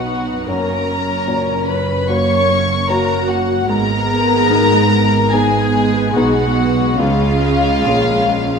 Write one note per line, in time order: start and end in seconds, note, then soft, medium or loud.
0.00 0.44 B1 medium
0.00 0.43 B2 medium
0.00 0.46 B3 medium
0.00 0.49 B3 soft
0.00 0.46 D#4 medium
0.00 0.47 F#4 medium
0.00 0.50 F#4 soft
0.00 0.50 D#5 soft
0.00 0.47 F#5 medium
0.46 3.70 F#1 medium
0.46 3.70 F#2 medium
0.46 1.26 F#2 medium
0.46 0.88 A#3 medium
0.46 0.88 C#4 medium
0.46 1.65 A#4 medium
0.46 1.69 A#5 medium
0.90 2.07 C#4 medium
1.27 2.04 A#2 soft
1.27 2.05 F#4 soft
1.27 2.05 C#5 soft
1.68 2.09 B4 medium
1.68 2.08 B5 medium
2.08 2.88 A#3 medium
2.08 2.86 A#3 soft
2.08 2.88 C#4 medium
2.08 2.86 F#4 soft
2.08 2.89 C#5 medium
2.08 2.86 C#5 soft
2.08 2.90 C#6 medium
2.88 3.66 A#3 soft
2.88 3.69 A#3 medium
2.88 3.66 F#4 soft
2.88 3.71 F#4 medium
2.88 3.29 A#4 medium
2.88 3.67 C#5 soft
2.88 3.29 A#5 medium
3.27 3.70 F#4 medium
3.27 3.69 F#5 medium
3.68 6.12 G#1 medium
3.68 4.49 G#2 medium
3.68 6.12 G#2 medium
3.68 5.30 G#3 medium
3.68 5.30 B3 medium
3.68 5.29 A#4 medium
3.68 5.29 A#5 loud
4.50 5.29 B3 soft
4.50 5.29 D#4 soft
4.50 5.30 G#4 soft
5.33 6.97 G#3 medium
5.33 6.12 B3 soft
5.33 6.97 B3 medium
5.33 6.12 D#4 soft
5.33 6.16 G#4 medium
5.33 6.12 G#4 soft
5.33 6.16 G#5 medium
6.15 7.00 B1 medium
6.15 7.00 B2 medium
6.15 6.96 B3 soft
6.15 6.96 D#4 soft
6.15 6.98 F#4 medium
6.15 6.97 G#4 medium
6.15 7.00 F#5 medium
6.99 7.84 C#2 medium
6.99 7.87 C#2 medium
6.99 7.86 C#3 medium
6.99 8.59 G#3 medium
6.99 8.59 C#4 medium
6.99 8.59 F4 loud
6.99 8.59 F5 loud
7.87 8.59 A#1 medium
7.87 8.59 A#2 medium
7.87 8.59 G#3 soft
7.87 8.59 C#4 soft
7.87 8.59 G#4 soft